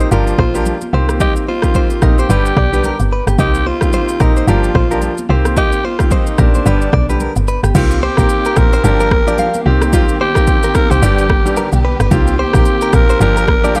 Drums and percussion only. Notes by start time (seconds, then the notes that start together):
0.00 shaker
0.12 low conga, shaker
0.27 shaker
0.39 kick, cross-stick, high conga
0.55 shaker
0.65 low conga, shaker
0.81 high conga, shaker
1.09 cross-stick, high conga, shaker
1.20 kick, low conga, shaker
1.36 shaker
1.48 high conga
1.62 kick, cross-stick, shaker
1.74 kick, low conga, shaker
1.90 shaker
2.02 kick, cross-stick, high conga, shaker
2.18 shaker
2.30 low conga, shaker
2.45 shaker
2.57 kick, cross-stick, high conga
2.73 shaker
2.84 low conga, shaker
3.00 high conga, shaker
3.27 cross-stick, high conga, shaker
3.39 kick, low conga, shaker
3.54 shaker
3.66 high conga
3.81 kick, cross-stick, shaker
3.93 low conga, shaker
4.09 shaker
4.20 kick, cross-stick, high conga, shaker
4.36 shaker
4.48 low conga, shaker
4.64 shaker
4.75 kick, cross-stick, high conga
4.91 shaker
5.02 low conga, shaker
5.18 high conga, shaker
5.45 cross-stick, high conga, shaker
5.57 kick, low conga, shaker
5.72 shaker
5.85 high conga
5.99 kick, cross-stick, shaker
6.11 kick, low conga, shaker
6.27 shaker
6.38 kick, cross-stick, high conga, shaker
6.54 shaker
6.66 low conga, shaker
6.82 shaker
6.93 kick, cross-stick, high conga
7.09 shaker
7.20 low conga, shaker
7.36 high conga, shaker
7.48 shaker
7.64 cross-stick, high conga, shaker
7.75 kick, crash, low conga, shaker
7.91 shaker
8.03 high conga
8.17 kick, cross-stick, shaker
8.29 shaker
8.45 shaker
8.56 kick, cross-stick, high conga, shaker
8.73 shaker
8.84 low conga, shaker
9.00 shaker
9.11 kick, cross-stick, high conga
9.28 shaker
9.38 low conga, shaker
9.54 high conga, shaker
9.82 cross-stick, high conga, shaker
9.93 kick, low conga, shaker
10.09 shaker
10.21 high conga
10.35 kick, cross-stick, shaker
10.47 kick, shaker
10.63 shaker
10.75 kick, cross-stick, high conga, shaker
10.91 shaker
11.03 low conga, shaker
11.18 shaker
11.29 kick, cross-stick, high conga
11.46 shaker
11.56 low conga, shaker
11.72 high conga, shaker
12.00 cross-stick, high conga, shaker
12.11 kick, low conga, shaker
12.27 shaker
12.39 high conga
12.53 kick, cross-stick, shaker
12.65 shaker
12.81 shaker
12.93 kick, cross-stick, high conga, shaker
13.09 shaker
13.21 low conga, shaker
13.37 shaker
13.47 kick, cross-stick, high conga
13.64 shaker
13.75 low conga, shaker